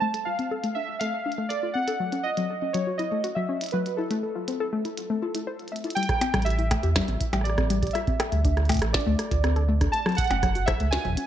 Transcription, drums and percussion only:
0.14 closed hi-hat
0.39 closed hi-hat
0.64 closed hi-hat
1.01 closed hi-hat
1.32 closed hi-hat
1.50 closed hi-hat
1.88 closed hi-hat
2.12 closed hi-hat
2.37 closed hi-hat
2.74 closed hi-hat
2.99 closed hi-hat
3.24 closed hi-hat
3.61 closed hi-hat
3.64 closed hi-hat
3.69 closed hi-hat
3.71 closed hi-hat
3.86 closed hi-hat
4.11 closed hi-hat
4.48 closed hi-hat
4.85 closed hi-hat
4.97 closed hi-hat
5.35 closed hi-hat
5.59 closed hi-hat
5.68 closed hi-hat
5.76 closed hi-hat
5.84 closed hi-hat
5.90 closed hi-hat
5.97 closed hi-hat
6.03 closed hi-hat
6.09 kick, cross-stick, closed hi-hat
6.21 closed hi-hat, percussion blips
6.34 kick, cross-stick, closed hi-hat
6.42 closed hi-hat
6.46 closed hi-hat
6.50 closed hi-hat
6.59 closed hi-hat, cabasa
6.71 kick, cross-stick, closed hi-hat, percussion blips
6.83 closed hi-hat
6.96 kick, cross-stick, snare, closed hi-hat
7.08 closed hi-hat
7.21 kick, closed hi-hat
7.33 cross-stick, closed hi-hat, percussion blips
7.41 cross-stick
7.45 closed hi-hat
7.50 cross-stick
7.58 kick, cross-stick, closed hi-hat
7.70 closed hi-hat
7.83 kick, closed hi-hat
7.87 closed hi-hat
7.91 closed hi-hat
7.95 cross-stick, closed hi-hat
8.07 kick, closed hi-hat
8.20 cross-stick, closed hi-hat, percussion blips
8.32 closed hi-hat
8.45 kick, closed hi-hat
8.57 cross-stick, closed hi-hat
8.65 closed hi-hat
8.69 kick, closed hi-hat, percussion blips
8.72 kick, closed hi-hat
8.74 kick, closed hi-hat
8.77 kick, closed hi-hat
8.79 cross-stick, closed hi-hat
8.82 closed hi-hat
8.94 kick, snare, closed hi-hat
9.00 closed hi-hat
9.19 cross-stick, closed hi-hat
9.31 kick, closed hi-hat
9.44 cross-stick, closed hi-hat
9.56 closed hi-hat
9.81 kick, cross-stick, closed hi-hat
9.93 closed hi-hat
10.06 cross-stick, closed hi-hat
10.09 closed hi-hat
10.12 closed hi-hat
10.15 kick, closed hi-hat
10.18 closed hi-hat
10.21 closed hi-hat
10.24 closed hi-hat
10.28 closed hi-hat
10.31 closed hi-hat, percussion blips
10.43 kick, cross-stick, closed hi-hat
10.55 closed hi-hat, cabasa
10.68 kick, cross-stick, closed hi-hat, percussion blips
10.80 closed hi-hat
10.93 snare, closed hi-hat
11.05 kick, closed hi-hat
11.08 kick
11.10 kick
11.12 kick
11.15 kick, closed hi-hat

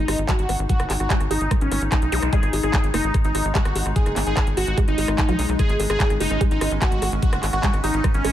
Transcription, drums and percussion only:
0.08 cross-stick, open hi-hat
0.18 closed hi-hat
0.29 kick, cross-stick, clap, closed hi-hat
0.39 closed hi-hat
0.49 cross-stick, open hi-hat
0.59 closed hi-hat
0.69 kick, closed hi-hat
0.80 cross-stick, closed hi-hat
0.90 clap, open hi-hat
1.00 cross-stick, closed hi-hat
1.10 kick, clap, closed hi-hat
1.20 cross-stick, closed hi-hat
1.31 open hi-hat
1.41 closed hi-hat
1.51 kick, cross-stick, closed hi-hat
1.61 closed hi-hat
1.72 cross-stick, open hi-hat
1.82 closed hi-hat
1.92 kick, cross-stick, clap, closed hi-hat
2.02 closed hi-hat
2.12 open hi-hat
2.22 cross-stick, closed hi-hat
2.33 kick, closed hi-hat
2.43 cross-stick, closed hi-hat
2.53 open hi-hat
2.63 cross-stick, closed hi-hat
2.73 kick, clap, closed hi-hat
2.84 closed hi-hat
2.94 cross-stick, open hi-hat
3.04 closed hi-hat
3.14 kick, cross-stick, closed hi-hat
3.25 closed hi-hat
3.35 cross-stick, open hi-hat
3.45 closed hi-hat
3.55 kick, clap, closed hi-hat
3.65 cross-stick, closed hi-hat
3.76 open hi-hat
3.86 cross-stick, closed hi-hat
3.96 kick, closed hi-hat
4.06 cross-stick, closed hi-hat
4.16 clap, open hi-hat
4.27 closed hi-hat
4.37 kick, cross-stick, clap, closed hi-hat
4.47 closed hi-hat
4.57 cross-stick, open hi-hat
4.67 closed hi-hat
4.78 kick, cross-stick, closed hi-hat
4.88 closed hi-hat
4.98 open hi-hat
5.08 cross-stick
5.18 kick, clap, closed hi-hat
5.29 cross-stick, closed hi-hat
5.39 open hi-hat
5.49 cross-stick, closed hi-hat
5.59 kick, cross-stick, closed hi-hat
5.69 closed hi-hat
5.80 open hi-hat
5.90 cross-stick, closed hi-hat
6.00 kick, clap, closed hi-hat
6.10 cross-stick, closed hi-hat
6.20 open hi-hat
6.31 cross-stick, closed hi-hat
6.41 kick, closed hi-hat
6.51 closed hi-hat
6.61 cross-stick, open hi-hat
6.71 closed hi-hat
6.82 kick, cross-stick, clap, closed hi-hat
6.92 closed hi-hat
7.02 cross-stick, open hi-hat
7.22 kick, closed hi-hat
7.33 cross-stick, closed hi-hat
7.43 clap, open hi-hat
7.53 cross-stick, closed hi-hat
7.63 kick, clap, closed hi-hat
7.73 cross-stick, closed hi-hat
7.84 open hi-hat
7.94 closed hi-hat
8.04 kick, cross-stick, closed hi-hat
8.14 closed hi-hat
8.25 cross-stick, open hi-hat

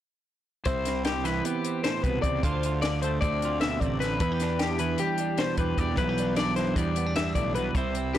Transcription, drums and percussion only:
0.65 kick, closed hi-hat
0.85 snare, closed hi-hat
1.05 snare, closed hi-hat
1.25 snare, closed hi-hat
1.45 closed hi-hat
1.65 closed hi-hat
1.84 snare, closed hi-hat
2.04 kick, closed hi-hat
2.23 kick, closed hi-hat
2.43 kick, closed hi-hat
2.63 closed hi-hat
2.82 snare, closed hi-hat
3.02 closed hi-hat
3.22 kick, closed hi-hat
3.42 closed hi-hat
3.61 snare, closed hi-hat
3.81 kick, closed hi-hat
4.02 snare, closed hi-hat
4.20 kick, closed hi-hat
4.40 snare, closed hi-hat
4.59 snare, closed hi-hat
4.79 closed hi-hat
4.98 closed hi-hat
5.18 closed hi-hat
5.38 snare, closed hi-hat
5.57 kick, closed hi-hat
5.78 kick, closed hi-hat
5.97 kick, closed hi-hat
6.18 closed hi-hat
6.36 snare, closed hi-hat
6.56 snare, closed hi-hat
6.76 kick, closed hi-hat
6.96 closed hi-hat
7.16 snare, closed hi-hat
7.35 kick, closed hi-hat
7.55 closed hi-hat
7.75 kick, closed hi-hat
7.95 closed hi-hat
8.15 closed hi-hat

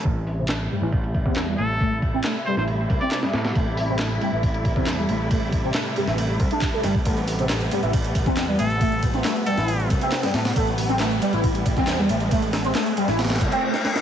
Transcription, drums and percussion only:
0.05 kick, ride
0.27 open hi-hat
0.49 snare, clap, ride
0.71 ride
0.92 kick, ride
1.04 ride
1.14 kick, ride
1.26 kick
1.36 snare, clap, ride
1.58 ride
1.80 kick, ride
2.02 kick, ride
2.24 snare, clap, ride
2.46 ride
2.57 snare
2.68 ride
2.90 kick, ride
3.01 ride
3.12 snare, clap, ride
3.23 snare, ride
3.33 snare, ride
3.45 snare, ride
3.55 kick, ride
3.77 open hi-hat
3.99 snare, clap, ride
4.21 ride
4.43 kick, ride
4.54 ride
4.65 kick, ride
4.76 kick
4.87 snare, clap, ride
5.09 ride
5.31 kick, ride
5.52 kick, ride
5.74 snare, clap, ride
5.96 ride
6.07 snare
6.18 ride
6.40 kick, ride
6.51 ride
6.62 kick, clap, ride
6.84 snare, ride
6.95 kick
7.05 kick, closed hi-hat, ride
7.17 closed hi-hat
7.28 closed hi-hat, open hi-hat
7.39 closed hi-hat
7.49 snare, clap, closed hi-hat, ride
7.61 closed hi-hat
7.71 closed hi-hat, ride
7.83 closed hi-hat
7.93 kick, closed hi-hat, ride
8.04 closed hi-hat, ride
8.15 kick, closed hi-hat, ride
8.26 kick, closed hi-hat
8.37 snare, clap, closed hi-hat, ride
8.59 closed hi-hat, ride
8.70 closed hi-hat
8.81 kick, closed hi-hat, ride
8.92 closed hi-hat
9.03 kick, closed hi-hat, ride
9.14 closed hi-hat
9.24 snare, clap, closed hi-hat, ride
9.36 closed hi-hat
9.46 closed hi-hat, ride
9.57 snare, closed hi-hat
9.68 closed hi-hat, ride
9.80 closed hi-hat
9.90 kick, closed hi-hat, ride
10.01 closed hi-hat, ride
10.12 snare, clap, closed hi-hat, ride
10.23 snare, ride
10.34 snare, closed hi-hat, ride
10.45 snare, closed hi-hat, ride
10.56 kick, closed hi-hat, ride
10.67 closed hi-hat
10.78 closed hi-hat, open hi-hat
10.89 closed hi-hat
11.00 snare, clap, closed hi-hat, ride
11.11 closed hi-hat
11.22 closed hi-hat, ride
11.33 closed hi-hat
11.44 kick, closed hi-hat, ride
11.55 closed hi-hat, ride
11.66 kick, closed hi-hat, ride
11.77 kick, closed hi-hat
11.87 snare, clap, closed hi-hat, ride
12.09 closed hi-hat, ride
12.20 closed hi-hat
12.31 kick, closed hi-hat, ride
12.42 closed hi-hat
12.53 snare, closed hi-hat, ride
12.64 closed hi-hat
12.75 snare, clap, closed hi-hat, ride
12.86 closed hi-hat
12.97 closed hi-hat, ride
13.08 snare, closed hi-hat
13.19 snare, closed hi-hat, ride
13.25 snare, ride
13.30 snare, closed hi-hat, ride
13.35 snare, ride
13.41 kick, closed hi-hat, ride
13.52 closed hi-hat, ride
13.74 snare
13.85 snare
13.96 snare

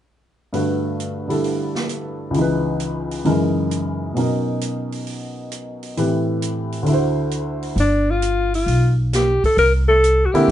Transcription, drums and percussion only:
0.54 open hi-hat
1.00 closed hi-hat
1.30 open hi-hat
1.44 open hi-hat
1.75 snare
1.89 closed hi-hat
2.34 open hi-hat
2.80 closed hi-hat
3.11 open hi-hat
3.25 open hi-hat
3.71 closed hi-hat
4.16 open hi-hat
4.61 closed hi-hat
4.92 open hi-hat
5.07 open hi-hat
5.52 closed hi-hat
5.83 open hi-hat
5.97 open hi-hat
6.42 closed hi-hat
6.72 open hi-hat
6.86 open hi-hat
7.31 closed hi-hat
7.62 open hi-hat
7.78 open hi-hat
8.22 closed hi-hat
8.54 open hi-hat
8.68 open hi-hat
9.13 snare, closed hi-hat
9.44 kick, open hi-hat
9.58 open hi-hat
10.04 closed hi-hat
10.35 open hi-hat

